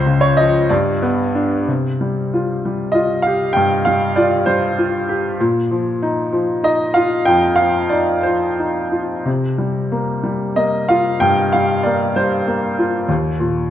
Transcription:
grand piano
Already playing: C#2 C5
0.06 C#3
0.21 C#5
0.37 F3 D#5
0.69 G2 D5
1.02 B3
1.35 D4
1.68 C3
2.01 G3
2.34 F4
2.65 G3
2.92 F4 D#5
3.22 G4 F5
3.53 G2 G5
3.85 G3 F5
4.16 F4 D5
4.46 G3 C5
4.78 F4
5.09 G4
5.40 A#2
5.71 F3
6.02 D#4
6.33 F3
6.63 D#4 D#5
6.94 F4 F5
7.25 F2 G5
7.56 F3 F5
7.89 D#4 D5
8.23 F3 C5
8.59 D#4
8.92 F4
9.25 C3
9.58 G3
9.92 A#3
10.23 G3
10.56 A#3 D#5
10.89 F4 F5
11.20 G2 G5
11.52 G3 F5
11.83 A#3 D5
12.16 G3 C5
12.47 A#3
12.79 F4
13.08 D#2
13.40 A#2

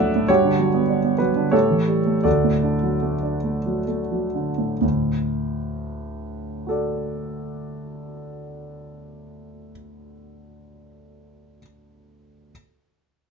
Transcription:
grand piano
Already playing: D2 A2 A3 D4 F#4 A4 D5 E5 F#5
0.00 F#3
0.16 A2
0.28 G2 F#4 G4 C#5
0.44 D3
0.59 F#3
0.74 B3
0.88 D4
1.04 B3
1.18 F#3 B4
1.36 D3
1.51 A2 G4 A4 C#5
1.70 E3
1.87 G3
2.06 A3
2.24 D2 F#4 A4 D5
2.44 A2
2.63 D3
2.83 F#3
3.02 A3
3.23 D4
3.44 A3
3.66 F#3
3.88 A3
4.12 F#3
4.35 D3
4.58 A2
4.81 D2 A2
6.67 F#4 A4
6.71 D5

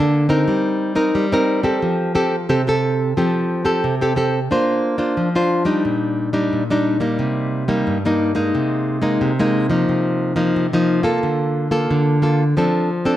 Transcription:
nylon-string guitar
Already playing: D3
0.00 A#3 D4 A4
0.29 C4 D#4 A#4
0.48 G3
0.95 C4 D#4 A#4
1.15 G3
1.32 C4 D#4 A#4
1.63 C4 G4 A4
1.82 F3
2.15 C4 G4 A4
2.49 C3 C4 G4 A4
2.67 C4 G4 A4
3.17 F3 C4 G4 A4
3.65 C4 G4 A4
3.84 C3
4.01 C4 G4 A4
4.16 C4 G4 A4
4.51 A#3 D4 F4 C5
4.98 D4 F4 C5
5.17 F3
5.35 D4 F4 C5
5.65 G3 D4 D#4
5.85 A#2
6.33 G3 D4 D#4
6.53 A#2
6.70 G3 D4 D#4
7.00 G3 A#3 D#4
7.19 C3
7.68 G3 A#3 D#4
7.87 G2
8.05 G3 A#3 D#4
8.35 G#3 A#3 D#4
8.55 C3
9.02 G#3 A#3 D#4
9.21 C3
9.39 G#3 A#3 D#4
9.70 F3 A#3 D#4
9.89 C3
10.36 F3 A#3 D#4
10.56 C3
10.73 F3 A#3 D#4
11.03 A#3 F4 A4
11.23 D3
11.71 A#3 F4 A4
11.91 D3
12.22 A#3 F4 A4
12.57 F3 C4 D4 A4
13.05 C4 D4 A4

